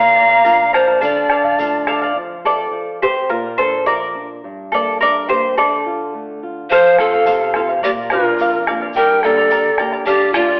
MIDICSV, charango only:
0, 0, Header, 1, 2, 480
1, 0, Start_track
1, 0, Tempo, 565504
1, 870, Time_signature, 2, 2, 24, 8
1, 8996, End_track
2, 0, Start_track
2, 0, Title_t, "Charango"
2, 0, Program_c, 0, 24
2, 0, Note_on_c, 0, 70, 72
2, 0, Note_on_c, 0, 74, 74
2, 0, Note_on_c, 0, 77, 90
2, 120, Note_off_c, 0, 70, 0
2, 127, Note_off_c, 0, 74, 0
2, 130, Note_on_c, 0, 70, 57
2, 133, Note_off_c, 0, 77, 0
2, 137, Note_on_c, 0, 74, 63
2, 143, Note_on_c, 0, 77, 60
2, 239, Note_off_c, 0, 77, 0
2, 249, Note_on_c, 0, 77, 60
2, 251, Note_off_c, 0, 74, 0
2, 259, Note_off_c, 0, 70, 0
2, 261, Note_on_c, 0, 74, 44
2, 369, Note_off_c, 0, 74, 0
2, 375, Note_on_c, 0, 70, 71
2, 378, Note_off_c, 0, 77, 0
2, 379, Note_on_c, 0, 74, 71
2, 388, Note_on_c, 0, 77, 69
2, 610, Note_off_c, 0, 70, 0
2, 619, Note_off_c, 0, 74, 0
2, 620, Note_on_c, 0, 70, 59
2, 623, Note_off_c, 0, 77, 0
2, 629, Note_on_c, 0, 74, 67
2, 634, Note_on_c, 0, 77, 72
2, 728, Note_off_c, 0, 77, 0
2, 739, Note_off_c, 0, 74, 0
2, 739, Note_on_c, 0, 77, 51
2, 745, Note_off_c, 0, 70, 0
2, 749, Note_on_c, 0, 74, 41
2, 850, Note_off_c, 0, 74, 0
2, 853, Note_on_c, 0, 69, 73
2, 854, Note_off_c, 0, 77, 0
2, 861, Note_on_c, 0, 74, 78
2, 864, Note_on_c, 0, 77, 89
2, 1091, Note_off_c, 0, 69, 0
2, 1101, Note_off_c, 0, 74, 0
2, 1101, Note_on_c, 0, 69, 62
2, 1104, Note_off_c, 0, 77, 0
2, 1112, Note_on_c, 0, 74, 59
2, 1114, Note_on_c, 0, 77, 63
2, 1216, Note_off_c, 0, 77, 0
2, 1227, Note_off_c, 0, 69, 0
2, 1227, Note_off_c, 0, 74, 0
2, 1227, Note_on_c, 0, 77, 57
2, 1238, Note_on_c, 0, 74, 43
2, 1339, Note_off_c, 0, 74, 0
2, 1344, Note_off_c, 0, 77, 0
2, 1345, Note_on_c, 0, 69, 61
2, 1349, Note_on_c, 0, 74, 60
2, 1355, Note_on_c, 0, 77, 69
2, 1575, Note_off_c, 0, 69, 0
2, 1581, Note_off_c, 0, 74, 0
2, 1585, Note_on_c, 0, 69, 75
2, 1587, Note_off_c, 0, 77, 0
2, 1591, Note_on_c, 0, 74, 75
2, 1597, Note_on_c, 0, 77, 75
2, 1702, Note_off_c, 0, 77, 0
2, 1710, Note_off_c, 0, 69, 0
2, 1713, Note_off_c, 0, 74, 0
2, 1713, Note_on_c, 0, 77, 56
2, 1727, Note_on_c, 0, 74, 53
2, 1834, Note_off_c, 0, 77, 0
2, 1841, Note_off_c, 0, 74, 0
2, 2084, Note_on_c, 0, 69, 65
2, 2090, Note_on_c, 0, 74, 77
2, 2529, Note_off_c, 0, 69, 0
2, 2567, Note_on_c, 0, 67, 67
2, 2568, Note_off_c, 0, 74, 0
2, 2572, Note_on_c, 0, 72, 78
2, 2788, Note_off_c, 0, 67, 0
2, 2789, Note_off_c, 0, 72, 0
2, 2798, Note_on_c, 0, 70, 71
2, 2801, Note_on_c, 0, 65, 53
2, 3023, Note_off_c, 0, 70, 0
2, 3025, Note_off_c, 0, 65, 0
2, 3039, Note_on_c, 0, 72, 77
2, 3046, Note_on_c, 0, 69, 55
2, 3268, Note_off_c, 0, 69, 0
2, 3277, Note_off_c, 0, 72, 0
2, 3280, Note_on_c, 0, 74, 80
2, 3286, Note_on_c, 0, 70, 59
2, 3618, Note_off_c, 0, 74, 0
2, 3621, Note_off_c, 0, 70, 0
2, 4006, Note_on_c, 0, 69, 63
2, 4027, Note_on_c, 0, 74, 75
2, 4230, Note_off_c, 0, 69, 0
2, 4249, Note_on_c, 0, 70, 72
2, 4255, Note_off_c, 0, 74, 0
2, 4265, Note_on_c, 0, 74, 96
2, 4472, Note_off_c, 0, 70, 0
2, 4489, Note_on_c, 0, 67, 66
2, 4491, Note_off_c, 0, 74, 0
2, 4495, Note_on_c, 0, 72, 78
2, 4712, Note_off_c, 0, 67, 0
2, 4714, Note_off_c, 0, 72, 0
2, 4733, Note_on_c, 0, 69, 60
2, 4738, Note_on_c, 0, 74, 73
2, 5418, Note_off_c, 0, 69, 0
2, 5418, Note_off_c, 0, 74, 0
2, 5697, Note_on_c, 0, 69, 70
2, 5702, Note_on_c, 0, 72, 82
2, 5706, Note_on_c, 0, 77, 74
2, 5924, Note_off_c, 0, 69, 0
2, 5927, Note_off_c, 0, 72, 0
2, 5934, Note_on_c, 0, 69, 58
2, 5937, Note_off_c, 0, 77, 0
2, 5937, Note_on_c, 0, 72, 52
2, 5946, Note_on_c, 0, 77, 58
2, 6040, Note_off_c, 0, 77, 0
2, 6047, Note_off_c, 0, 72, 0
2, 6050, Note_on_c, 0, 77, 60
2, 6051, Note_off_c, 0, 69, 0
2, 6058, Note_on_c, 0, 72, 45
2, 6158, Note_off_c, 0, 72, 0
2, 6159, Note_on_c, 0, 69, 65
2, 6160, Note_off_c, 0, 77, 0
2, 6168, Note_on_c, 0, 72, 62
2, 6170, Note_on_c, 0, 77, 73
2, 6393, Note_off_c, 0, 69, 0
2, 6401, Note_off_c, 0, 72, 0
2, 6404, Note_on_c, 0, 69, 69
2, 6406, Note_off_c, 0, 77, 0
2, 6411, Note_on_c, 0, 72, 67
2, 6416, Note_on_c, 0, 77, 77
2, 6516, Note_off_c, 0, 77, 0
2, 6523, Note_off_c, 0, 72, 0
2, 6525, Note_off_c, 0, 69, 0
2, 6526, Note_on_c, 0, 77, 50
2, 6541, Note_on_c, 0, 72, 44
2, 6640, Note_off_c, 0, 77, 0
2, 6643, Note_on_c, 0, 70, 73
2, 6644, Note_on_c, 0, 74, 78
2, 6650, Note_on_c, 0, 77, 81
2, 6653, Note_off_c, 0, 72, 0
2, 6876, Note_off_c, 0, 70, 0
2, 6879, Note_off_c, 0, 74, 0
2, 6887, Note_off_c, 0, 77, 0
2, 6887, Note_on_c, 0, 70, 61
2, 6889, Note_on_c, 0, 74, 61
2, 6897, Note_on_c, 0, 77, 69
2, 6991, Note_off_c, 0, 77, 0
2, 6998, Note_off_c, 0, 74, 0
2, 7002, Note_on_c, 0, 77, 54
2, 7005, Note_off_c, 0, 70, 0
2, 7017, Note_on_c, 0, 74, 42
2, 7122, Note_off_c, 0, 77, 0
2, 7124, Note_off_c, 0, 74, 0
2, 7127, Note_on_c, 0, 70, 55
2, 7134, Note_on_c, 0, 74, 61
2, 7142, Note_on_c, 0, 77, 69
2, 7343, Note_off_c, 0, 70, 0
2, 7353, Note_on_c, 0, 70, 61
2, 7354, Note_off_c, 0, 74, 0
2, 7358, Note_off_c, 0, 77, 0
2, 7364, Note_on_c, 0, 74, 70
2, 7368, Note_on_c, 0, 77, 70
2, 7470, Note_off_c, 0, 77, 0
2, 7477, Note_off_c, 0, 70, 0
2, 7477, Note_off_c, 0, 74, 0
2, 7481, Note_on_c, 0, 77, 49
2, 7487, Note_on_c, 0, 74, 42
2, 7600, Note_off_c, 0, 77, 0
2, 7603, Note_off_c, 0, 74, 0
2, 7606, Note_on_c, 0, 67, 68
2, 7609, Note_on_c, 0, 79, 81
2, 7610, Note_on_c, 0, 70, 69
2, 7612, Note_on_c, 0, 82, 77
2, 7613, Note_on_c, 0, 74, 79
2, 7832, Note_off_c, 0, 79, 0
2, 7833, Note_off_c, 0, 70, 0
2, 7838, Note_off_c, 0, 74, 0
2, 7841, Note_off_c, 0, 67, 0
2, 7841, Note_off_c, 0, 82, 0
2, 7842, Note_on_c, 0, 79, 52
2, 7844, Note_on_c, 0, 70, 58
2, 7848, Note_on_c, 0, 74, 57
2, 7852, Note_on_c, 0, 82, 60
2, 7943, Note_off_c, 0, 82, 0
2, 7951, Note_off_c, 0, 74, 0
2, 7953, Note_on_c, 0, 82, 57
2, 7958, Note_off_c, 0, 70, 0
2, 7959, Note_off_c, 0, 79, 0
2, 7961, Note_on_c, 0, 74, 49
2, 7968, Note_on_c, 0, 70, 43
2, 8066, Note_off_c, 0, 70, 0
2, 8067, Note_off_c, 0, 74, 0
2, 8069, Note_on_c, 0, 79, 56
2, 8070, Note_off_c, 0, 82, 0
2, 8077, Note_on_c, 0, 70, 64
2, 8078, Note_on_c, 0, 74, 61
2, 8080, Note_on_c, 0, 82, 74
2, 8298, Note_off_c, 0, 79, 0
2, 8301, Note_off_c, 0, 70, 0
2, 8303, Note_off_c, 0, 74, 0
2, 8305, Note_off_c, 0, 82, 0
2, 8308, Note_on_c, 0, 79, 68
2, 8311, Note_on_c, 0, 70, 64
2, 8314, Note_on_c, 0, 74, 66
2, 8316, Note_on_c, 0, 82, 74
2, 8414, Note_off_c, 0, 82, 0
2, 8422, Note_off_c, 0, 74, 0
2, 8424, Note_on_c, 0, 82, 52
2, 8430, Note_off_c, 0, 79, 0
2, 8432, Note_off_c, 0, 70, 0
2, 8432, Note_on_c, 0, 74, 41
2, 8440, Note_on_c, 0, 70, 42
2, 8536, Note_off_c, 0, 70, 0
2, 8538, Note_off_c, 0, 74, 0
2, 8539, Note_on_c, 0, 69, 77
2, 8548, Note_off_c, 0, 82, 0
2, 8548, Note_on_c, 0, 74, 84
2, 8550, Note_on_c, 0, 77, 82
2, 8769, Note_off_c, 0, 69, 0
2, 8777, Note_off_c, 0, 74, 0
2, 8779, Note_off_c, 0, 77, 0
2, 8779, Note_on_c, 0, 69, 53
2, 8787, Note_on_c, 0, 74, 59
2, 8789, Note_on_c, 0, 77, 66
2, 8889, Note_off_c, 0, 77, 0
2, 8899, Note_on_c, 0, 77, 57
2, 8900, Note_off_c, 0, 74, 0
2, 8904, Note_off_c, 0, 69, 0
2, 8910, Note_on_c, 0, 74, 43
2, 8996, Note_off_c, 0, 74, 0
2, 8996, Note_off_c, 0, 77, 0
2, 8996, End_track
0, 0, End_of_file